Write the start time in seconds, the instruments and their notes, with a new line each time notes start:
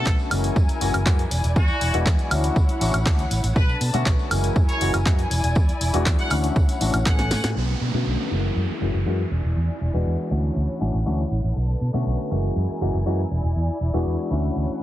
Already playing: grand piano D3 A3 B3 C#4 F#4, string section D3 B4 A5, trumpet section A4
0.05 fingered electric bass B1, kick, clap, tambourine
0.19 tambourine
0.30 fingered electric bass F#1, grand piano E3 G#3 A#3 C#4 F#4, string section E4 A#4 G#5, open hi-hat, tambourine, high woodblock
0.44 closed hi-hat, tambourine
0.56 fingered electric bass F#2, kick, tambourine
0.69 muted fingered electric bass stroke, closed hi-hat, tambourine
0.80 fingered electric bass F#1, grand piano E3 G#3 A#3 C#4 F#4, open hi-hat, tambourine
0.94 fingered electric bass F#1, closed hi-hat, tambourine, high woodblock
1.06 fingered electric bass F#2, grand piano E3 G#3 A#3 C#4 F#4, kick, clap, tambourine
1.19 closed hi-hat, tambourine
1.31 fingered electric bass E1, string section E4 D5 G#5, open hi-hat, tambourine
1.44 fingered electric bass E1, closed hi-hat, tambourine
1.56 fingered electric bass E2, trumpet section F#4, kick, tambourine
1.68 muted fingered electric bass stroke, tambourine
1.81 fingered electric bass E1, open hi-hat, tambourine
1.93 fingered electric bass E1, grand piano E3 G#3 B3 D4 F#4, closed hi-hat, tambourine
2.06 fingered electric bass E2, kick, clap, tambourine
2.19 closed hi-hat, tambourine
2.31 fingered electric bass D2, grand piano E3 A3 C#4 D4 F#4, string section C#5 F#5, open hi-hat, tambourine, high woodblock
2.44 closed hi-hat, tambourine
2.56 fingered electric bass D2, kick, tambourine
2.69 muted fingered electric bass stroke, closed hi-hat, tambourine
2.81 fingered electric bass A1, grand piano E3 A3 C#4 D4 F#4, open hi-hat, tambourine
2.94 fingered electric bass A1, closed hi-hat, high woodblock
3.06 fingered electric bass D2, grand piano E3 A3 C#4 D4 F#4, kick, clap, tambourine
3.19 closed hi-hat, tambourine
3.31 fingered electric bass A1, open hi-hat, tambourine
3.44 fingered electric bass A1, closed hi-hat, tambourine
3.56 fingered electric bass B1, string section D3 B4 A5, trumpet section B4, kick, tambourine
3.69 tambourine
3.81 fingered electric bass B2, open hi-hat, tambourine
3.93 fingered electric bass B2, grand piano D3 A3 B3 C#4 F#4, closed hi-hat, tambourine
4.06 fingered electric bass B1, kick, clap
4.19 tambourine
4.31 fingered electric bass F#1, grand piano E3 G#3 A#3 C#4 F#4, string section E4 A#4 G#5, open hi-hat, tambourine, high woodblock
4.43 closed hi-hat, tambourine
4.56 fingered electric bass F#2, kick, tambourine
4.69 trumpet section C#5, muted fingered electric bass stroke, closed hi-hat, tambourine
4.81 fingered electric bass F#1, grand piano E3 G#3 A#3 C#4 F#4, open hi-hat, tambourine
4.94 fingered electric bass F#1, closed hi-hat, tambourine, high woodblock
5.05 fingered electric bass F#2, grand piano E3 G#3 A#3 C#4 F#4, kick, clap, tambourine
5.18 closed hi-hat, tambourine
5.31 fingered electric bass E1, string section E4 D5, open hi-hat, tambourine
5.44 fingered electric bass E1, closed hi-hat, tambourine
5.55 fingered electric bass E2, kick, tambourine
5.69 muted fingered electric bass stroke, closed hi-hat, tambourine
5.81 fingered electric bass E1, open hi-hat, tambourine
5.93 fingered electric bass E1, grand piano E3 G#3 B3 D4 F#4, closed hi-hat, tambourine
6.06 fingered electric bass E2, kick, clap, tambourine
6.19 trumpet section F#5, closed hi-hat, tambourine
6.30 fingered electric bass D2, grand piano E3 A3 C#4 D4 F#4, string section C#5 F#5, open hi-hat, tambourine, high woodblock
6.44 closed hi-hat, tambourine
6.56 fingered electric bass D2, kick, tambourine
6.69 muted fingered electric bass stroke, closed hi-hat, tambourine
6.80 fingered electric bass A1, grand piano E3 A3 C#4 D4 F#4, open hi-hat, tambourine
6.94 fingered electric bass A1, closed hi-hat, tambourine, high woodblock
7.06 fingered electric bass A1, grand piano E3 A3 B3 C#4 G#4, string section C#4 A4 G#5, trumpet section F#5, kick, clap
7.19 snare, closed hi-hat, tambourine
7.31 fingered electric bass A2, snare, open hi-hat, tambourine
7.44 fingered electric bass A2, snare, closed hi-hat, tambourine
7.56 fingered electric bass B1, string section D3 B4 A5, downlifter
7.81 fingered electric bass B2
7.93 fingered electric bass B2, grand piano D3 A3 B3 C#4 F#4
8.06 fingered electric bass B1
8.30 fingered electric bass F#1, grand piano E3 G#3 A#3 C#4 F#4, string section E4 A#4 G#5
8.56 fingered electric bass F#2
8.69 muted fingered electric bass stroke
8.81 fingered electric bass F#1, grand piano E3 G#3 A#3 C#4 F#4
8.94 fingered electric bass F#1
9.06 fingered electric bass F#2, grand piano E3 G#3 A#3 C#4 F#4
9.31 fingered electric bass E1, string section E4 D5 G#5
9.44 fingered electric bass E1
9.56 fingered electric bass E2
9.69 muted fingered electric bass stroke
9.81 fingered electric bass E1
9.93 fingered electric bass E1, grand piano E3 G#3 B3 D4 F#4
10.06 fingered electric bass E2
10.31 fingered electric bass D2, grand piano E3 A3 C#4 D4 F#4, string section E4 C#5 F#5
10.56 fingered electric bass D2
10.69 muted fingered electric bass stroke
10.81 fingered electric bass A1, grand piano E3 A3 C#4 D4 F#4
10.94 fingered electric bass A1
11.05 fingered electric bass D2, grand piano E3 A3 C#4 D4 F#4
11.31 fingered electric bass A1
11.44 fingered electric bass A1
11.56 fingered electric bass B1, string section D3 B4 A5
11.81 fingered electric bass B2
11.93 fingered electric bass B2, grand piano D3 A3 B3 C#4 F#4
12.06 fingered electric bass B1
12.31 fingered electric bass F#1, grand piano E3 G#3 A#3 C#4 F#4, string section E4 A#4 G#5
12.56 fingered electric bass F#2
12.69 muted fingered electric bass stroke
12.81 fingered electric bass F#1, grand piano E3 G#3 A#3 C#4 F#4
12.94 fingered electric bass F#1
13.06 fingered electric bass F#2, grand piano E3 G#3 A#3 C#4 F#4
13.31 fingered electric bass E1, string section D5
13.44 fingered electric bass E1
13.56 fingered electric bass E2
13.69 muted fingered electric bass stroke
13.81 fingered electric bass E1
13.93 fingered electric bass E1, grand piano E3 G#3 B3 D4 F#4
14.06 fingered electric bass E2
14.31 fingered electric bass D2, grand piano E3 A3 C#4 D4 F#4, string section C#5 F#5
14.56 fingered electric bass D2
14.69 muted fingered electric bass stroke